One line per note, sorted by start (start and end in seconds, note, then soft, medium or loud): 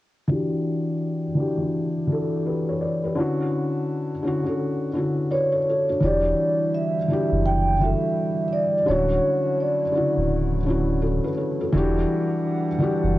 0.28 1.23 E3 medium
0.28 1.23 D4 medium
0.28 1.24 F#4 medium
0.33 1.25 G4 loud
1.35 1.54 E3 medium
1.35 1.55 D4 medium
1.35 1.56 F#4 medium
1.40 1.57 G4 medium
1.57 2.01 E3 medium
1.57 2.02 D4 medium
1.57 2.03 F#4 medium
1.63 2.04 G4 medium
2.07 3.02 E3 medium
2.07 3.02 D4 medium
2.07 2.46 F#4 medium
2.12 2.46 A4 medium
2.46 2.66 G4 medium
2.46 2.66 B4 medium
2.69 2.81 A4 soft
2.69 2.81 C#5 medium
2.81 3.02 B4 soft
2.81 3.01 D5 medium
3.04 3.37 G4 soft
3.04 3.37 B4 medium
3.15 4.09 D3 loud
3.15 4.10 C#4 medium
3.15 4.11 E4 medium
3.20 4.11 F#4 loud
4.23 4.41 D3 medium
4.23 4.42 C#4 medium
4.23 4.43 E4 medium
4.28 4.44 F#4 loud
4.44 4.87 D3 medium
4.44 4.88 C#4 medium
4.44 4.89 E4 medium
4.49 4.90 A4 medium
4.94 5.56 D3 medium
4.94 5.31 C#4 medium
4.94 5.31 E4 medium
4.98 5.32 F#4 medium
5.31 5.52 B4 medium
5.31 6.05 C#5 medium
5.31 5.51 D5 medium
5.52 5.66 A4 medium
5.52 5.66 C#5 medium
5.69 5.88 F#4 soft
5.69 5.88 A4 medium
5.89 6.01 D4 medium
5.89 6.02 F#4 medium
6.01 6.34 E1 loud
6.01 8.85 D3 medium
6.01 6.95 E3 medium
6.01 11.70 E3 medium
6.01 8.85 G3 medium
6.01 6.95 D4 medium
6.01 8.85 E4 medium
6.01 6.96 F#4 medium
6.01 6.76 D5 medium
6.05 6.97 G4 loud
6.74 7.47 E5 medium
7.08 7.71 E3 medium
7.08 7.72 D4 medium
7.08 7.72 F#4 medium
7.13 7.73 G4 medium
7.32 7.95 F#1 medium
7.45 7.82 G5 loud
7.80 8.73 E3 medium
7.80 8.74 D4 medium
7.80 8.75 F#4 medium
7.80 8.47 E5 medium
7.84 8.76 A4 medium
8.48 8.53 E5 medium
8.53 8.89 D5 medium
8.86 9.20 D1 loud
8.86 9.80 D3 loud
8.86 11.71 F#3 medium
8.86 11.71 A3 medium
8.86 9.81 C#4 medium
8.86 11.70 E4 medium
8.86 9.82 E4 medium
8.86 9.55 C#5 medium
8.91 9.83 F#4 loud
9.61 10.27 D5 medium
9.92 10.56 C#3 medium
9.92 10.56 D3 medium
9.92 10.57 E4 medium
9.97 10.58 F#4 medium
10.17 11.20 D1 medium
10.65 11.28 D3 medium
10.65 11.28 C#4 medium
10.65 11.29 E4 medium
10.70 11.01 F#4 medium
11.02 11.23 F#4 medium
11.02 11.23 A4 medium
11.24 11.37 B4 medium
11.37 11.58 A4 medium
11.37 11.58 C#5 medium
11.60 11.74 F#4 medium
11.60 11.94 A4 medium
11.72 12.05 E1 loud
11.72 12.66 E3 loud
11.72 13.19 E3 medium
11.72 13.19 G3 medium
11.72 13.19 D4 medium
11.72 12.67 D4 loud
11.72 12.68 F#4 medium
11.72 13.19 F#5 medium
11.77 12.69 G4 loud
12.79 13.19 E3 medium
12.79 13.19 D4 medium
12.79 13.19 F#4 medium
12.84 13.19 G4 loud
13.04 13.19 F#1 medium